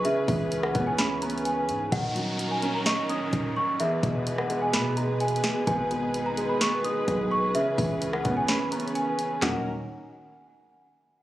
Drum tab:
HH |x-----o-----x-----x-----x-----x-x-x-x-----x-----|x-----x-----x-----x-----x-----x-----x-----------|x-----x-----x-----x-----x-----x-----x-x-x-x-----|x-----x-----x-----x-----x-----x-----x-----------|
CP |------------------------------------------------|------------------------------------------------|------------------------------------------------|------------------------------------------------|
SD |---------------r--------o-----------------------|------------------------o-----------------------|---------------r--------o-----------------o-----|------------------------o-----------------------|
FT |------------------------------------------------|------------------------------------------------|------------------------------------------------|------------------------------------------------|
BD |------o-----------o-----------------------------|o-----------------------------------o-----------|------o-----------------------------------------|o-----------------------------------o-----------|

HH |x-----o-----x-----x-----x-----x-x-x-x-----x-----|------------------------------------------------|
CP |------------------------------------------------|x-----------------------------------------------|
SD |---------------r--------o-----------------------|o-----------------------------------------------|
FT |------------------------------------------------|o-----------------------------------------------|
BD |------o-----------o-----------------------------|------------------------------------------------|